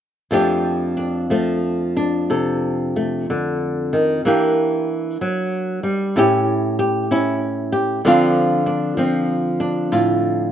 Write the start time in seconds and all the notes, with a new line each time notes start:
0.31 F2 F3 A3 D4 G4
0.97 D4
1.30 F3 A3
1.97 D4
2.30 C3 A4
2.96 A3
3.30 D3
3.93 D#3
4.25 E3 A#3 D4 G4
5.21 F#3
5.83 G3
6.16 A2 C#4 E4 G4
6.79 G4
7.11 C#4 E4
7.72 G4
8.05 D3 F3 C4 D4 F4
8.66 D4
8.97 F3 C4
9.60 D4
9.92 A2 F4